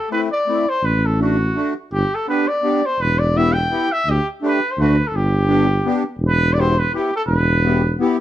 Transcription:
0.00 0.11 A4 medium
0.11 0.29 A3 medium
0.11 0.29 C4 medium
0.11 0.30 E4 medium
0.11 0.21 B4 medium
0.31 0.71 D5 medium
0.47 0.65 A3 medium
0.47 0.66 C4 soft
0.47 0.66 E4 medium
0.69 0.87 C5 medium
0.83 1.53 A1 medium
0.83 1.07 B4 medium
1.06 1.21 A4 medium
1.18 1.36 A3 medium
1.18 1.37 D4 soft
1.18 1.38 F#4 medium
1.23 1.73 F#4 medium
1.55 1.73 A3 soft
1.55 1.73 D4 soft
1.55 1.74 F#4 medium
1.92 2.04 G1 medium
1.92 2.16 G4 medium
2.15 2.28 A4 medium
2.27 2.45 B3 soft
2.27 2.46 D4 soft
2.27 2.46 G4 medium
2.27 2.49 B4 medium
2.48 2.87 D5 medium
2.63 2.81 B3 medium
2.63 2.81 D4 medium
2.63 2.82 G4 medium
2.86 3.02 C5 medium
3.00 3.69 E1 medium
3.00 3.20 B4 medium
3.19 3.39 D5 medium
3.35 3.53 B3 medium
3.35 3.54 E4 medium
3.35 3.54 G4 medium
3.35 3.54 E5 medium
3.53 3.94 G5 medium
3.70 3.88 B3 soft
3.70 3.89 E4 medium
3.70 3.89 G4 medium
3.92 4.12 E5 medium
4.06 4.19 D2 medium
4.10 4.28 G4 medium
4.42 4.59 A3 medium
4.42 4.59 D4 medium
4.42 4.60 G4 medium
4.47 4.73 B4 medium
4.71 4.82 C5 medium
4.78 5.01 D2 medium
4.78 4.96 A3 medium
4.78 4.96 D4 soft
4.78 4.96 F#4 medium
4.78 5.09 B4 medium
5.07 5.17 A4 medium
5.12 5.83 G1 medium
5.16 6.06 G4 medium
5.48 5.66 B3 medium
5.48 5.66 D4 medium
5.48 5.67 G4 medium
5.85 6.03 B3 medium
5.85 6.03 D4 medium
5.85 6.04 G4 medium
6.19 6.89 E1 medium
6.27 6.55 B4 loud
6.53 6.75 B3 medium
6.53 6.75 E4 medium
6.53 6.62 D5 medium
6.58 6.75 G4 medium
6.58 6.81 C5 medium
6.79 6.94 B4 medium
6.92 7.10 B3 medium
6.92 7.11 E4 medium
6.92 7.11 G4 medium
6.92 7.12 G4 medium
7.16 7.22 A4 medium
7.27 7.96 E1 medium
7.27 7.95 B4 medium
7.64 7.81 B3 medium
7.64 7.82 E4 medium
7.64 7.82 G4 medium
7.99 8.16 B3 medium
7.99 8.17 E4 medium
7.99 8.18 G4 medium

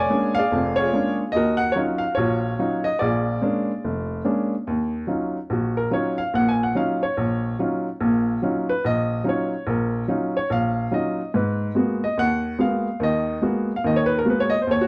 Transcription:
0.00 0.74 C#5 medium
0.00 0.37 D5 medium
0.00 0.37 G#5 loud
0.10 0.38 G#3 medium
0.10 0.38 A#3 soft
0.10 0.38 C#4 soft
0.10 0.38 D4 medium
0.35 1.17 D5 medium
0.35 0.78 F5 loud
0.39 0.79 G#4 medium
0.52 0.87 F1 medium
0.52 0.87 F2 medium
0.76 1.15 C#5 medium
0.80 1.32 F4 medium
0.80 1.32 G#4 medium
0.93 1.21 G#3 soft
0.93 1.21 A#3 soft
0.93 1.21 C#4 soft
0.93 1.22 D4 medium
1.32 1.70 D#2 medium
1.32 1.61 D#5 medium
1.36 2.14 F#4 medium
1.36 2.15 A#4 medium
1.57 1.73 F#5 medium
1.72 2.04 F#3 soft
1.72 1.78 C#5 medium
1.76 2.04 C#4 soft
1.76 2.04 D#4 medium
1.76 2.04 F4 medium
1.98 2.16 F5 medium
2.15 2.53 A#1 medium
2.15 2.87 C#5 medium
2.19 2.58 F4 medium
2.19 2.98 F#4 medium
2.59 2.87 F#3 medium
2.59 2.87 C#4 soft
2.59 2.88 D#4 soft
2.59 2.88 F4 medium
2.84 3.00 D#5 medium
2.99 3.37 A#1 medium
2.99 4.22 F4 medium
2.99 4.22 G#4 medium
2.99 4.21 D5 medium
3.42 3.70 G#3 medium
3.42 3.71 A#3 soft
3.42 3.71 C#4 soft
3.42 3.71 D4 medium
3.85 4.20 F1 medium
4.25 4.53 G#3 soft
4.25 4.54 A#3 soft
4.25 4.54 C#4 soft
4.25 4.54 D4 medium
4.67 5.03 D#2 medium
5.07 5.36 F#3 medium
5.07 5.37 C#4 soft
5.07 5.37 D#4 soft
5.07 5.37 F4 medium
5.50 5.86 A#1 medium
5.50 5.77 F#4 medium
5.77 5.91 A#4 medium
5.91 6.20 F#3 medium
5.91 6.20 C#4 soft
5.91 6.20 D#4 soft
5.91 6.20 F4 medium
5.91 6.19 C#5 medium
6.18 6.33 F5 medium
6.34 6.70 A#1 medium
6.34 6.70 A#2 medium
6.34 6.48 F#5 medium
6.49 6.61 G#5 medium
6.63 6.76 F#5 medium
6.75 7.03 F#3 medium
6.75 7.04 C#4 soft
6.75 7.03 D#4 soft
6.75 7.04 F4 medium
6.75 7.02 F5 medium
7.03 7.55 C#5 medium
7.17 7.53 A#1 medium
7.59 7.87 F#3 medium
7.59 7.87 C#4 soft
7.59 7.87 D#4 soft
7.59 7.87 F4 medium
8.00 8.36 A#1 medium
8.00 8.36 A#2 medium
8.42 8.70 F#3 medium
8.42 8.71 C#4 medium
8.42 8.70 D#4 soft
8.42 8.71 F4 medium
8.69 8.83 B4 medium
8.85 9.20 A#1 medium
8.85 9.23 D#5 medium
9.24 9.53 F#3 medium
9.24 9.53 C#4 soft
9.24 9.53 D#4 soft
9.24 9.53 F4 medium
9.29 9.66 C#5 medium
9.67 10.03 A#1 medium
9.67 10.07 A#4 medium
10.08 10.36 F#3 soft
10.08 10.37 C#4 medium
10.08 10.37 D#4 soft
10.08 10.37 F4 medium
10.37 10.50 C#5 medium
10.50 10.86 A#1 medium
10.50 10.90 F5 medium
10.91 11.20 F#3 medium
10.91 11.20 C#4 soft
10.91 11.20 D#4 soft
10.91 11.20 F4 medium
10.91 11.32 D#5 medium
11.34 11.70 G#2 medium
11.34 11.73 B4 medium
11.75 12.03 G#3 medium
11.75 12.04 A#3 soft
11.75 12.04 B3 soft
11.75 12.04 F#4 medium
12.04 12.17 D#5 medium
12.17 12.53 D#2 medium
12.17 12.57 F#5 medium
12.59 12.87 G#3 medium
12.59 12.87 A#3 soft
12.59 12.87 B3 soft
12.59 12.87 F#4 medium
12.59 12.98 F5 medium
13.00 13.36 D#2 medium
13.00 13.36 D#3 medium
13.00 13.41 D#5 medium
13.42 13.70 G#3 medium
13.42 13.71 A#3 medium
13.42 13.71 B3 medium
13.42 13.71 F#4 medium
13.76 13.83 F5 medium
13.84 14.20 D#2 medium
13.84 14.20 D#3 medium
13.84 13.98 D#5 medium
13.96 14.10 C#5 medium
14.06 14.15 B4 medium
14.18 14.25 A#4 medium
14.25 14.54 G#3 soft
14.25 14.54 A#3 soft
14.25 14.54 B3 soft
14.25 14.54 F#4 medium
14.30 14.41 B4 medium
14.40 14.53 C#5 medium
14.50 14.58 D#5 medium
14.62 14.68 C5 medium
14.67 14.88 D#2 medium
14.71 14.82 C#5 medium
14.81 14.88 F#4 medium

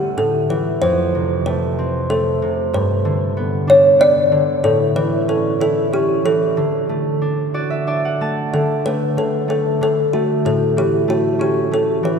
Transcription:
0.00 0.23 D3 soft
0.00 1.46 A3 soft
0.00 0.16 G4 medium
0.00 0.88 F#5 soft
0.17 0.88 A2 soft
0.17 0.51 A4 medium
0.50 0.88 E3 soft
0.50 0.84 B4 medium
0.82 2.80 F2 medium
0.82 1.49 C5 medium
1.15 2.41 C3 soft
1.46 2.10 A3 soft
1.46 2.06 B4 medium
1.79 3.43 C4 soft
2.10 5.43 A3 soft
2.10 2.76 A4 medium
2.42 2.80 C3 soft
2.73 4.70 G2 medium
2.73 3.72 B4 medium
3.05 4.30 D3 soft
3.37 3.98 B3 soft
3.67 5.34 D4 medium
3.67 3.99 C#5 medium
3.99 7.09 B3 soft
3.99 4.45 D5 medium
4.32 4.70 D3 soft
4.63 6.62 A2 medium
4.63 4.97 A4 medium
4.96 6.24 E3 soft
4.96 5.26 B4 medium
5.28 5.92 C#4 soft
5.28 5.60 A4 medium
5.60 8.21 E4 soft
5.60 5.94 A4 medium
5.93 6.63 C#4 soft
5.93 6.26 G4 medium
6.25 6.62 E3 soft
6.25 7.83 A4 medium
6.57 8.52 D3 medium
6.89 8.20 A3 soft
7.22 7.87 D4 soft
7.54 9.98 F#4 soft
7.54 7.87 D5 medium
7.70 9.43 E5 medium
7.87 10.67 D4 soft
7.87 9.72 D5 medium
8.05 9.66 F#5 medium
8.21 8.85 A3 soft
8.21 9.66 A5 medium
8.53 9.16 D3 medium
8.53 8.86 A4 medium
8.85 9.48 A3 soft
8.85 9.15 B4 medium
9.17 9.80 D3 soft
9.17 9.49 A4 medium
9.48 10.13 A3 soft
9.48 9.82 A4 medium
9.81 10.50 D3 soft
9.81 10.15 A4 medium
10.13 11.07 A3 soft
10.13 10.46 F#4 medium
10.45 12.19 A2 medium
10.45 10.78 A4 medium
10.77 12.02 E3 soft
10.77 11.10 G4 medium
11.08 11.71 A3 soft
11.08 11.39 F#4 medium
11.39 12.19 C#4 medium
11.39 11.73 G4 medium
11.71 12.19 A3 soft
11.71 12.06 A4 medium
12.03 12.19 E3 soft
12.03 12.19 B4 medium

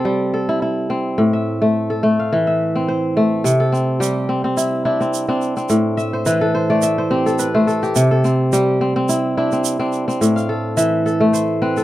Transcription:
0.00 1.23 C3 medium
0.00 0.64 A3 medium
0.00 0.89 C4 medium
0.00 0.31 F4 medium
0.00 0.33 A4 medium
0.05 1.23 G3 medium
0.34 1.65 A4 medium
0.49 0.62 E4 medium
0.62 2.19 E4 medium
0.90 2.70 C4 medium
1.18 3.49 A2 medium
1.33 2.25 E5 medium
1.62 2.03 A3 medium
1.90 3.22 A4 medium
2.03 3.16 A3 medium
2.19 3.19 F5 medium
2.33 3.49 E3 medium
2.47 3.50 E5 medium
2.76 3.72 C4 medium
2.88 4.07 C5 medium
3.17 5.16 A3 medium
3.44 5.75 C3 medium
3.44 shaker medium
3.60 4.92 A4 medium
3.72 4.29 C4 medium
3.72 shaker soft
4.00 5.75 G3 medium
4.00 5.42 G4 medium
4.00 shaker medium
4.29 4.44 C4 medium
4.44 5.00 C4 medium
4.57 4.85 E4 medium
4.57 shaker medium
4.85 5.28 D4 medium
4.85 6.42 E4 medium
5.01 5.28 C4 medium
5.01 shaker soft
5.14 shaker medium
5.29 5.56 C4 medium
5.29 6.97 D4 medium
5.42 shaker soft
5.57 6.32 C4 medium
5.57 shaker soft
5.69 8.01 A2 medium
5.69 shaker medium
5.97 6.82 E5 medium
5.97 shaker soft
6.13 6.54 C5 medium
6.26 8.01 E3 medium
6.26 6.61 B4 medium
6.26 shaker medium
6.41 7.26 A4 medium
6.55 6.98 C5 medium
6.70 7.54 A3 medium
6.70 7.81 D5 medium
6.82 7.86 E5 medium
6.82 shaker medium
6.98 7.45 C5 medium
7.11 7.45 C4 medium
7.11 7.82 G4 medium
7.26 7.67 A4 medium
7.26 shaker soft
7.39 8.02 B4 medium
7.39 shaker medium
7.54 9.54 A3 medium
7.54 8.73 C5 medium
7.67 8.11 A4 medium
7.67 shaker soft
7.83 8.52 G4 medium
7.83 shaker soft
7.96 10.26 C3 medium
7.96 shaker medium
8.11 9.43 A4 medium
8.24 8.81 C4 medium
8.24 shaker soft
8.53 10.26 G3 medium
8.53 9.94 G4 medium
8.53 shaker medium
8.81 8.96 C4 medium
8.96 9.52 C4 medium
9.09 9.37 E4 medium
9.09 shaker medium
9.37 9.79 D4 medium
9.37 10.42 E4 medium
9.52 9.79 C4 medium
9.52 shaker soft
9.65 shaker medium
9.79 10.07 C4 medium
9.79 11.48 D4 medium
9.93 shaker soft
10.08 11.61 C4 medium
10.08 shaker soft
10.21 11.84 A2 medium
10.21 shaker medium
10.36 10.83 F5 medium
10.36 shaker soft
10.49 11.05 A4 medium
10.77 11.84 E3 medium
10.77 11.81 E5 medium
10.77 shaker medium
11.06 11.77 A4 medium
11.06 shaker soft
11.21 11.84 A3 medium
11.33 11.84 C5 medium
11.33 shaker medium
11.62 11.84 C4 medium
11.62 11.84 B4 medium
11.77 11.84 A4 medium
11.77 shaker soft

